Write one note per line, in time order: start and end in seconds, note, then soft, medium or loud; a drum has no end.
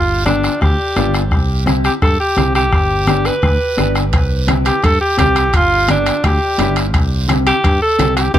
0.00 0.47 G1 loud
0.00 0.24 F4 medium
0.26 0.51 B3 medium
0.26 0.63 D4 medium
0.26 0.51 D4 medium
0.26 0.51 G4 medium
0.26 bombo rim medium
0.26 high conga medium
0.26 short guiro medium
0.44 bombo rim medium
0.44 short guiro medium
0.61 0.76 D2 medium
0.61 1.14 G4 medium
0.61 bombo low medium
0.61 bombo rim medium
0.61 high conga soft
0.61 long guiro medium
0.96 1.32 G1 medium
0.96 1.21 B3 medium
0.96 1.21 D4 medium
0.96 1.21 F4 medium
0.96 bombo rim medium
0.96 high conga medium
0.96 short guiro medium
1.14 bombo rim medium
1.14 short guiro medium
1.31 1.88 C2 loud
1.31 bombo low medium
1.31 bombo rim medium
1.31 high conga soft
1.31 long guiro medium
1.66 1.91 C4 medium
1.66 1.91 E4 medium
1.66 1.92 G4 medium
1.66 bombo rim medium
1.66 high conga medium
1.66 short guiro medium
1.84 1.93 G4 medium
1.84 bombo rim medium
1.84 short guiro medium
2.02 2.16 G2 medium
2.02 2.19 A4 medium
2.02 bombo low medium
2.02 bombo rim medium
2.02 high conga soft
2.02 long guiro medium
2.20 2.53 G4 medium
2.37 2.73 C2 medium
2.37 2.61 C4 medium
2.37 2.62 E4 medium
2.37 2.62 G4 medium
2.37 bombo rim medium
2.37 high conga medium
2.37 short guiro medium
2.55 3.27 G4 medium
2.55 bombo rim medium
2.55 short guiro medium
2.72 3.29 G1 medium
2.72 bombo low medium
2.72 bombo rim medium
2.72 high conga soft
2.72 long guiro medium
3.07 3.32 B3 medium
3.07 3.32 D4 medium
3.07 3.32 G4 medium
3.07 bombo rim medium
3.07 high conga medium
3.07 short guiro medium
3.25 3.96 B4 medium
3.25 bombo rim medium
3.25 short guiro medium
3.42 3.57 D2 medium
3.42 bombo low medium
3.42 bombo rim medium
3.42 high conga soft
3.42 long guiro medium
3.77 4.14 G1 medium
3.77 4.02 B3 medium
3.77 4.02 D4 medium
3.77 4.03 G4 medium
3.77 bombo rim medium
3.77 high conga medium
3.77 short guiro medium
3.95 bombo rim medium
3.95 short guiro medium
4.13 4.70 C2 medium
4.13 bombo low medium
4.13 bombo rim medium
4.13 high conga soft
4.13 high timbale medium
4.13 long guiro medium
4.47 4.72 C4 medium
4.47 4.72 E4 medium
4.47 4.73 G4 medium
4.47 bombo rim medium
4.47 high conga medium
4.47 high timbale medium
4.47 short guiro medium
4.65 4.86 G4 medium
4.65 bombo rim medium
4.65 high timbale medium
4.65 short guiro medium
4.82 4.97 G2 medium
4.82 5.00 A4 medium
4.82 bombo low medium
4.82 bombo rim medium
4.82 high conga soft
4.82 high timbale medium
4.82 long guiro medium
5.01 5.17 G4 medium
5.17 5.54 C2 medium
5.17 5.43 C4 medium
5.17 5.43 E4 medium
5.17 5.43 G4 medium
5.17 5.57 G4 loud
5.17 bombo low medium
5.17 bombo rim medium
5.17 high conga medium
5.17 high timbale medium
5.17 low timbale medium
5.17 short guiro medium
5.36 bombo rim medium
5.36 high timbale medium
5.36 short guiro medium
5.53 6.10 G1 medium
5.53 5.90 F4 medium
5.53 bombo low medium
5.53 bombo rim medium
5.53 high conga soft
5.53 high timbale medium
5.53 long guiro medium
5.88 6.13 B3 medium
5.88 6.13 D4 medium
5.88 6.27 D4 medium
5.88 6.13 G4 medium
5.88 bombo rim medium
5.88 high conga medium
5.88 high timbale medium
5.88 short guiro medium
6.06 bombo rim medium
6.06 high timbale medium
6.06 short guiro medium
6.24 6.38 D2 medium
6.24 6.77 G4 medium
6.24 bombo low medium
6.24 bombo rim medium
6.24 high conga soft
6.24 high timbale medium
6.24 long guiro medium
6.58 6.94 G1 medium
6.58 6.83 B3 medium
6.58 6.83 D4 medium
6.58 6.83 E4 medium
6.58 bombo rim medium
6.58 high conga medium
6.58 high timbale medium
6.58 low timbale medium
6.58 short guiro medium
6.76 bombo rim medium
6.76 high timbale medium
6.76 short guiro medium
6.94 7.50 C2 loud
6.94 bombo low medium
6.94 bombo rim medium
6.94 high conga soft
6.94 high timbale medium
6.94 long guiro medium
7.28 7.53 C4 medium
7.28 7.53 E4 medium
7.28 7.54 G4 medium
7.28 bombo rim medium
7.28 high conga medium
7.28 high timbale medium
7.28 short guiro medium
7.46 7.79 G4 medium
7.46 bombo rim medium
7.46 high timbale medium
7.46 short guiro medium
7.64 7.78 G2 medium
7.64 bombo low medium
7.64 bombo rim medium
7.64 high conga soft
7.64 high timbale medium
7.64 long guiro medium
7.82 8.14 A4 loud
7.99 8.27 C2 medium
7.99 8.23 C4 medium
7.99 8.24 E4 medium
7.99 8.24 G4 medium
7.99 bombo rim medium
7.99 high conga medium
7.99 high timbale medium
7.99 low timbale medium
7.99 short guiro medium
8.16 8.33 G4 medium
8.16 bombo rim medium
8.16 high timbale medium
8.16 short guiro medium
8.34 8.39 C2 medium
8.34 8.39 C4 medium
8.34 8.39 E4 medium
8.34 8.39 G4 medium
8.34 bombo low medium
8.34 high conga medium
8.34 high timbale medium
8.34 long guiro medium